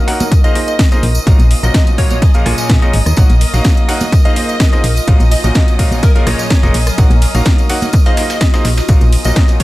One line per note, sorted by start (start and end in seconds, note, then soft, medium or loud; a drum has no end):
0.00 0.70 D#4 medium
0.00 0.70 A#4 medium
0.00 9.63 D#5 medium
0.00 9.63 D#6 medium
0.08 0.25 A#3 medium
0.08 0.25 D#4 medium
0.08 0.25 F#4 medium
0.08 0.25 A#4 medium
0.08 0.25 C#5 medium
0.08 0.25 F#5 loud
0.08 snare medium
0.08 closed hi-hat medium
0.08 open hi-hat loud
0.20 closed hi-hat soft
0.20 tambourine medium
0.20 high conga loud
0.31 1.27 F4 medium
0.31 kick loud
0.31 closed hi-hat medium
0.31 tambourine medium
0.44 0.53 A#3 medium
0.44 0.53 D#4 medium
0.44 0.53 F4 medium
0.44 0.53 G#4 medium
0.44 0.53 C5 medium
0.44 0.65 D#5 medium
0.44 0.53 F5 medium
0.44 closed hi-hat soft
0.44 tambourine soft
0.55 0.72 A#3 medium
0.55 0.72 D#4 medium
0.55 0.72 F4 medium
0.55 0.72 G#4 medium
0.55 0.72 C5 medium
0.55 0.72 D#5 loud
0.55 closed hi-hat medium
0.55 open hi-hat loud
0.68 0.89 D#5 medium
0.68 closed hi-hat soft
0.68 tambourine medium
0.75 1.66 F5 medium
0.75 2.61 G#5 medium
0.79 kick loud
0.79 snare loud
0.79 closed hi-hat medium
0.79 tambourine medium
0.92 1.01 A#3 loud
0.92 1.01 D#4 medium
0.92 1.01 F4 medium
0.92 1.01 G#4 medium
0.92 1.01 C5 medium
0.92 1.01 D#5 loud
0.92 snare soft
0.92 closed hi-hat soft
0.92 tambourine soft
1.03 1.19 A#1 medium
1.03 closed hi-hat medium
1.03 open hi-hat loud
1.15 tambourine medium
1.27 1.35 A#1 loud
1.27 1.38 A#2 medium
1.27 2.22 F#3 medium
1.27 1.38 C#4 medium
1.27 1.38 F4 medium
1.27 1.38 F#4 medium
1.27 1.38 A#4 medium
1.27 1.38 F5 medium
1.27 kick loud
1.27 closed hi-hat medium
1.27 tambourine medium
1.39 1.55 A#1 medium
1.39 closed hi-hat soft
1.39 tambourine soft
1.39 high conga medium
1.51 closed hi-hat medium
1.51 open hi-hat loud
1.63 1.71 A#1 medium
1.63 1.95 A#2 medium
1.63 1.95 C#4 medium
1.63 1.95 F4 medium
1.63 1.95 F#4 medium
1.63 1.96 A#4 medium
1.63 1.84 D#5 loud
1.63 1.95 D#5 medium
1.63 closed hi-hat soft
1.63 tambourine medium
1.70 2.61 C#5 medium
1.70 2.61 A#5 medium
1.74 kick loud
1.74 snare loud
1.74 closed hi-hat medium
1.74 tambourine medium
1.87 closed hi-hat soft
1.87 tambourine soft
1.98 2.15 A#2 medium
1.98 2.15 C#4 medium
1.98 2.15 F4 medium
1.98 2.15 F#4 medium
1.98 2.15 A#4 medium
1.98 2.06 C#5 loud
1.98 2.15 F5 loud
1.98 kick medium
1.98 closed hi-hat medium
1.98 open hi-hat loud
2.10 2.18 C#5 medium
2.10 closed hi-hat soft
2.10 tambourine medium
2.10 high conga medium
2.22 4.51 A#4 medium
2.22 kick loud
2.22 closed hi-hat medium
2.22 open hi-hat medium
2.22 tambourine medium
2.34 2.44 A#2 medium
2.34 2.44 C#4 medium
2.34 2.44 F4 medium
2.34 2.44 G#4 medium
2.34 2.44 A#4 medium
2.34 2.44 F5 loud
2.34 closed hi-hat soft
2.34 tambourine soft
2.46 2.54 A#1 medium
2.46 2.79 A#2 loud
2.46 2.79 C#4 medium
2.46 2.79 F4 medium
2.46 2.79 G#4 medium
2.46 2.79 A#4 medium
2.46 2.79 G#5 loud
2.46 cross-stick medium
2.46 closed hi-hat medium
2.46 open hi-hat loud
2.58 snare soft
2.58 closed hi-hat soft
2.58 tambourine medium
2.65 3.56 C#6 medium
2.69 2.78 A#2 medium
2.69 kick loud
2.69 snare loud
2.69 closed hi-hat medium
2.69 tambourine medium
2.82 2.92 A#2 loud
2.82 2.92 C#4 medium
2.82 2.92 F4 medium
2.82 2.92 G#4 medium
2.82 2.92 A#4 medium
2.82 2.92 D#5 loud
2.82 snare soft
2.82 closed hi-hat soft
2.82 tambourine soft
2.93 3.02 G#1 medium
2.93 closed hi-hat medium
2.93 open hi-hat loud
3.06 3.14 D#2 loud
3.06 cross-stick medium
3.06 closed hi-hat soft
3.06 tambourine medium
3.17 3.26 A#1 loud
3.17 3.28 A#3 medium
3.17 4.51 D#4 medium
3.17 3.28 D#4 medium
3.17 3.28 F#4 medium
3.17 3.28 A#4 medium
3.17 3.28 C#5 medium
3.17 3.28 F#5 loud
3.17 kick loud
3.17 closed hi-hat medium
3.17 tambourine medium
3.29 3.45 A#1 medium
3.29 closed hi-hat soft
3.29 tambourine soft
3.29 high conga medium
3.41 closed hi-hat medium
3.41 open hi-hat loud
3.41 ride medium
3.54 3.61 A#1 medium
3.54 3.86 A#3 medium
3.54 3.86 D#4 medium
3.54 3.86 F#4 medium
3.54 3.86 A#4 medium
3.54 3.86 C#5 medium
3.54 3.86 F5 medium
3.54 snare medium
3.54 closed hi-hat soft
3.54 tambourine medium
3.64 kick loud
3.64 snare loud
3.64 closed hi-hat medium
3.64 tambourine medium
3.77 closed hi-hat soft
3.77 tambourine soft
3.88 4.05 A#3 medium
3.88 4.05 D#4 medium
3.88 4.05 F#4 medium
3.88 4.06 A#4 medium
3.88 4.05 C#5 medium
3.88 4.05 F#5 loud
3.88 snare medium
3.88 closed hi-hat medium
3.88 open hi-hat loud
3.88 ride medium
4.01 closed hi-hat soft
4.01 tambourine medium
4.01 high conga medium
4.12 5.08 F4 medium
4.12 kick loud
4.12 closed hi-hat medium
4.12 tambourine medium
4.25 4.34 A#3 medium
4.25 4.34 D#4 medium
4.25 4.34 F4 medium
4.25 4.34 G#4 medium
4.25 4.34 C5 medium
4.25 4.46 D#5 medium
4.25 4.34 F5 loud
4.25 closed hi-hat soft
4.25 tambourine soft
4.36 4.53 A#3 medium
4.36 4.53 D#4 medium
4.36 4.53 F4 medium
4.36 4.53 G#4 medium
4.36 4.53 C5 medium
4.36 4.53 D#5 loud
4.36 closed hi-hat medium
4.36 open hi-hat loud
4.36 ride medium
4.49 4.70 D#5 loud
4.49 closed hi-hat soft
4.49 tambourine medium
4.55 5.46 F5 medium
4.55 6.42 G#5 medium
4.60 kick loud
4.60 snare loud
4.60 closed hi-hat medium
4.60 tambourine medium
4.72 4.82 A#3 loud
4.72 4.82 D#4 medium
4.72 4.82 F4 medium
4.72 4.82 G#4 medium
4.72 4.82 C5 medium
4.72 4.82 D#5 loud
4.72 snare soft
4.72 closed hi-hat soft
4.72 tambourine soft
4.84 5.00 A#1 medium
4.84 closed hi-hat medium
4.84 open hi-hat loud
4.84 ride medium
4.96 closed hi-hat soft
4.96 tambourine medium
5.07 5.16 A#1 loud
5.07 5.18 A#2 medium
5.07 6.03 F#3 medium
5.07 5.18 C#4 medium
5.07 5.19 F4 medium
5.07 5.18 F#4 medium
5.07 5.18 A#4 medium
5.07 5.18 F5 medium
5.07 kick loud
5.07 closed hi-hat medium
5.07 tambourine medium
5.20 5.36 A#1 medium
5.20 closed hi-hat soft
5.20 tambourine soft
5.20 high conga medium
5.24 6.42 C#5 medium
5.31 5.40 D#5 medium
5.31 closed hi-hat medium
5.31 open hi-hat loud
5.31 ride medium
5.44 5.52 A#1 medium
5.44 5.76 A#2 medium
5.44 5.76 C#4 medium
5.44 5.76 F4 medium
5.44 5.76 F#4 medium
5.44 5.76 A#4 medium
5.44 5.76 D#5 medium
5.44 5.51 D#5 medium
5.44 closed hi-hat soft
5.44 tambourine medium
5.49 6.42 A#5 medium
5.55 kick loud
5.55 snare loud
5.55 closed hi-hat medium
5.55 tambourine medium
5.68 closed hi-hat soft
5.68 tambourine soft
5.79 5.96 A#2 loud
5.79 5.96 C#4 medium
5.79 5.96 F4 medium
5.79 5.96 F#4 medium
5.79 5.96 A#4 medium
5.79 5.96 F5 loud
5.79 kick medium
5.79 closed hi-hat medium
5.79 open hi-hat loud
5.79 ride medium
5.92 tambourine medium
5.92 high conga medium
6.03 8.32 A#4 medium
6.03 6.11 A#4 medium
6.03 kick loud
6.03 closed hi-hat loud
6.03 open hi-hat medium
6.03 tambourine medium
6.15 6.24 A#2 medium
6.15 6.24 C#4 medium
6.15 6.24 F4 medium
6.15 6.24 G#4 medium
6.15 6.24 A#4 medium
6.15 6.23 A#4 medium
6.15 6.24 F5 loud
6.15 closed hi-hat soft
6.15 tambourine soft
6.27 6.35 A#1 medium
6.27 6.44 A#2 medium
6.27 6.44 C#4 medium
6.27 6.44 F4 medium
6.27 6.44 G#4 medium
6.27 6.44 A#4 medium
6.27 6.63 C#5 medium
6.27 6.44 D#5 loud
6.27 cross-stick medium
6.27 closed hi-hat medium
6.27 open hi-hat loud
6.27 ride medium
6.39 snare soft
6.39 closed hi-hat soft
6.39 tambourine medium
6.46 7.37 C#6 medium
6.50 kick loud
6.50 snare loud
6.50 closed hi-hat loud
6.50 closed hi-hat medium
6.50 tambourine medium
6.63 6.71 F1 loud
6.63 6.73 A#2 loud
6.63 6.73 C#4 medium
6.63 6.73 F4 medium
6.63 6.73 G#4 medium
6.63 6.73 A#4 loud
6.63 6.73 D#5 loud
6.63 snare soft
6.63 closed hi-hat soft
6.63 tambourine soft
6.74 6.91 A#1 medium
6.74 closed hi-hat medium
6.74 open hi-hat loud
6.74 ride medium
6.87 cross-stick medium
6.87 closed hi-hat soft
6.87 tambourine medium
6.98 7.07 A#1 loud
6.98 7.09 A#3 medium
6.98 7.09 D#4 medium
6.98 8.32 D#4 medium
6.98 7.09 F#4 medium
6.98 7.09 A#4 medium
6.98 7.09 C#5 medium
6.98 7.09 F#5 loud
6.98 kick loud
6.98 closed hi-hat medium
6.98 tambourine medium
7.10 7.26 A#1 medium
7.10 closed hi-hat soft
7.10 tambourine soft
7.10 high conga loud
7.22 closed hi-hat medium
7.22 open hi-hat loud
7.22 ride medium
7.35 7.42 A#1 medium
7.35 7.67 A#3 medium
7.35 7.67 D#4 medium
7.35 7.67 F#4 medium
7.35 7.67 A#4 medium
7.35 7.67 C#5 medium
7.35 7.67 F5 medium
7.35 snare medium
7.35 closed hi-hat soft
7.35 tambourine medium
7.45 kick loud
7.45 snare loud
7.45 closed hi-hat medium
7.45 tambourine medium
7.58 closed hi-hat soft
7.58 tambourine soft
7.69 7.87 A#3 loud
7.69 7.87 D#4 medium
7.69 7.86 F#4 medium
7.69 7.86 A#4 medium
7.69 7.87 C#5 medium
7.69 7.86 F#5 loud
7.69 closed hi-hat medium
7.69 open hi-hat loud
7.69 ride medium
7.82 closed hi-hat soft
7.82 tambourine medium
7.82 high conga medium
7.93 8.88 F4 medium
7.93 kick loud
7.93 closed hi-hat loud
7.93 closed hi-hat medium
7.93 tambourine medium
8.06 8.15 A#3 medium
8.06 8.15 D#4 medium
8.06 8.15 F4 medium
8.06 8.15 G#4 medium
8.06 8.15 C5 medium
8.06 8.27 D#5 medium
8.06 8.15 F5 loud
8.06 closed hi-hat soft
8.06 closed hi-hat medium
8.06 tambourine soft
8.12 9.27 F5 medium
8.17 8.34 A#3 medium
8.17 8.34 D#4 medium
8.17 8.34 F4 medium
8.17 8.34 G#4 medium
8.17 8.34 C5 medium
8.17 8.34 D#5 loud
8.17 snare loud
8.17 closed hi-hat medium
8.17 open hi-hat loud
8.17 ride medium
8.30 8.51 D#5 loud
8.30 snare loud
8.30 closed hi-hat soft
8.30 closed hi-hat medium
8.30 tambourine medium
8.36 9.63 G#5 medium
8.41 kick loud
8.41 snare loud
8.41 closed hi-hat loud
8.41 closed hi-hat medium
8.41 tambourine medium
8.54 8.63 A#3 loud
8.54 8.63 D#4 medium
8.54 8.63 F4 medium
8.54 8.63 G#4 medium
8.54 8.63 C5 medium
8.54 8.63 D#5 loud
8.54 snare loud
8.54 closed hi-hat soft
8.54 closed hi-hat medium
8.54 tambourine soft
8.65 8.81 A#1 medium
8.65 snare loud
8.65 closed hi-hat medium
8.65 open hi-hat loud
8.65 ride medium
8.78 snare loud
8.78 closed hi-hat soft
8.78 closed hi-hat medium
8.78 tambourine medium
8.88 8.97 A#1 loud
8.88 9.00 A#2 medium
8.88 9.63 F#3 medium
8.88 9.00 C#4 medium
8.88 9.00 F4 medium
8.88 9.00 F#4 medium
8.88 9.00 A#4 medium
8.88 9.00 F5 medium
8.88 kick loud
8.88 closed hi-hat loud
8.88 closed hi-hat medium
8.88 tambourine medium
9.01 9.17 A#1 medium
9.01 closed hi-hat soft
9.01 tambourine soft
9.01 high conga medium
9.12 closed hi-hat medium
9.12 open hi-hat loud
9.12 ride medium
9.20 9.63 C#5 medium
9.24 9.33 A#1 medium
9.24 9.57 A#2 medium
9.24 9.57 C#4 medium
9.24 9.57 F4 medium
9.24 9.57 F#4 medium
9.24 9.57 A#4 medium
9.24 9.57 D#5 medium
9.24 9.46 D#5 loud
9.24 closed hi-hat soft
9.24 tambourine medium
9.31 9.63 A#5 medium
9.36 kick loud
9.36 snare loud
9.36 closed hi-hat medium
9.36 tambourine medium
9.48 closed hi-hat soft
9.48 tambourine soft
9.60 9.63 A#2 medium
9.60 9.63 C#4 medium
9.60 9.63 F4 medium
9.60 9.63 F#4 medium
9.60 9.63 A#4 medium
9.60 9.63 C#5 loud
9.60 9.63 F5 loud
9.60 kick medium
9.60 closed hi-hat medium
9.60 open hi-hat loud
9.60 ride medium